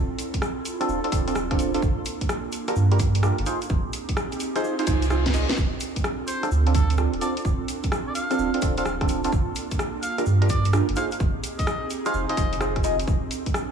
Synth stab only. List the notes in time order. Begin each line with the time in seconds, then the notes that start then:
0.81 C4 D4 F4 A4
1.04 C4 D4 F4 A4
1.12 C4 D4 F4 A4
1.28 C4 D4 F4 A4
1.51 C4 D4 F4 A4
1.74 C4 D4 F4 A4
2.68 D4 F4 G4 A#4
2.92 D4 F4 G4 A#4
3.23 D4 F4 G4 A#4
3.46 D#4 F4 G#4 C5
4.56 D#4 F4 G#4 C5
4.79 D#4 F4 G#4 C5
4.87 D#4 F4 G#4 C5
5.11 D#4 F4 G#4 C5
5.34 D#4 F4 G#4 D#5
6.43 C4 D4 F4 A4
6.67 C4 D4 F4 A4
6.98 C4 D4 F4 A4
7.21 C4 D4 F4 A4
8.31 C4 D4 F4 A4
8.54 C4 D4 F4 A4
8.62 C4 D4 F4 A4
8.78 C4 D4 F4 A4
9.01 C4 D4 F4 A4
9.25 C4 D4 F4 A4
10.18 D4 F4 G4 A#4
10.42 D4 F4 G4 A#4
10.73 D4 F4 G4 A#4
10.97 D#4 F4 G#4 C5
12.06 D#4 F4 G#4 C5
12.30 D#4 F4 G#4 C5
12.37 D#4 F4 G#4 C5
12.61 D#4 F4 G#4 C5
12.84 D#4 F4 G#4 D#5